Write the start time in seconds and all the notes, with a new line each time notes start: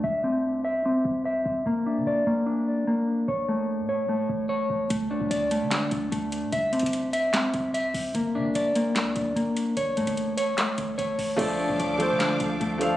0.04 C2 E5
0.24 C4
0.65 E5
0.86 C4
1.05 C2
1.25 E5
1.46 C2
1.66 G1 A#3
1.86 D4
1.96 D3
2.07 G1 D5
2.27 G1 A#3
2.46 D4
2.87 A#3
3.28 A1 C#5
3.49 A3
3.79 A2
3.89 C#5
4.09 A3
4.29 A1
4.49 C#5
4.70 A1
4.90 D2 A3, kick, closed hi-hat
5.11 C2 D4
5.21 D2, kick
5.31 D2 D5, closed hi-hat
5.51 A3, closed hi-hat
5.61 D3
5.71 D4, snare, clap, closed hi-hat
5.91 D2, kick, closed hi-hat
6.12 D2 A3, kick, closed hi-hat
6.32 closed hi-hat
6.42 A2
6.52 C2 E5, kick, closed hi-hat
6.73 C4, closed hi-hat
6.79 C2, kick, closed hi-hat
6.86 closed hi-hat
6.93 closed hi-hat
7.13 E5, closed hi-hat
7.34 C4, snare, clap, closed hi-hat
7.54 C2, kick, closed hi-hat
7.74 E5, closed hi-hat
7.94 C2, open hi-hat
8.15 G1 A#3, kick, closed hi-hat
8.35 D3 D4
8.45 G1, kick
8.55 G1 D5, closed hi-hat
8.75 A#3, closed hi-hat
8.95 D2 D4, snare, clap, closed hi-hat
9.16 D2, kick, closed hi-hat
9.36 G1 A#3, kick, closed hi-hat
9.57 closed hi-hat
9.77 A1 C#5, kick, closed hi-hat
9.97 A2 A3, closed hi-hat
10.07 A1, kick, closed hi-hat
10.17 closed hi-hat
10.37 C#5, closed hi-hat
10.58 A3, snare, clap, closed hi-hat
10.78 A1, kick, closed hi-hat
10.98 A1 C#5, kick, closed hi-hat
11.19 A1, open hi-hat
11.36 D2 F3 A3 D4 A4 F5 D6, kick, closed hi-hat, crash
11.41 D5
11.59 C2 D4
11.69 D2, kick
11.79 D2 D5, closed hi-hat
11.98 F3 A3 D4 A4, closed hi-hat
12.02 C5
12.10 D3
12.20 D4, snare, clap, closed hi-hat
12.40 D2, kick, closed hi-hat
12.60 D2 A3, kick, closed hi-hat
12.78 F3 A3 D4 A4, closed hi-hat
12.83 F5
12.91 A2